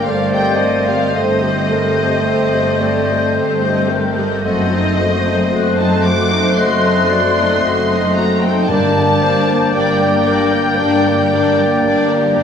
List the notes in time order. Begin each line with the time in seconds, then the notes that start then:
Already playing: A#3
0.03 G1 G2 A3 C4 A4 C5 D5 F5 G6
0.08 G4 C5
0.32 C4 G4 A4 D#5 G5
0.58 A3 G4 A4 C5 D#5
0.86 C4 G4 A4 D#5 F5
1.14 G1 G2 A3 C4 G4 A4 C5 D#5
1.42 C4 G4 A4 D#5
1.69 A3 G4 A4 A#4 C5
1.97 C4 G4 A4 D#5
2.23 G1 G2 A3 G4 A4 C5
2.51 C4 G4 A4 D#5
2.79 A3 G4 A4 C5 D5
3.07 C4 G4 A4 D#5
3.34 G1 G2 A3 G4 A4 C5
3.61 C4 G4 A4 D#5
3.88 A3 G4 A4 A#4 C5
4.15 C4 G4 A4 D#5
4.43 F#1 F#2 A3 C4 F#4 A4 C5 D#5
4.70 C4 D#4 A4 D#5
4.97 A3 F#4 C5
5.24 C4 D#4 A4 D#5
5.50 F#1 F#2 A3 F#4 C5 F#6
5.77 C4 D#4 A4 D#5 A5
6.03 A3 F#4 C5 D6
6.30 C4 D#4 A4 D#5
6.57 F#1 F#2 A3 C4 F#4 C5 D#5 C6
6.83 C4 D#4 A4 D#5
7.10 A3 F#4 C5 D5
7.37 C4 D#4 A4 D#5
7.63 F#1 F#2 A3 F#4 C5 D#5
7.91 C4 D#4 A4 D#5
8.15 A3 F#4 C5 A#5
8.42 C4 D#4 A4 D#5 G5
8.67 G1 G2 G3 A#3 D4 A#4 D5 A5 G6
8.95 A#3 G4 A#4
9.21 G3 D4 A#4 C5 D5
9.47 A#3 G4 A#4
9.72 G1 G2 G3 A#3 D4 A#4 D5 G5
9.99 A#3 G4 A#4
10.26 G3 D4 A#4 D5
10.52 A#3 G4 A#4
10.78 G1 G2 G3 D4 A#4 D5
11.06 A#3 G4 A#4
11.33 G3 D4 A#4 D5
11.59 A#3 G4 A#4
11.85 G1 G2 G3 D4 A#4 D5
12.12 A#3 G4 A#4
12.39 G3 D4 A#4 D5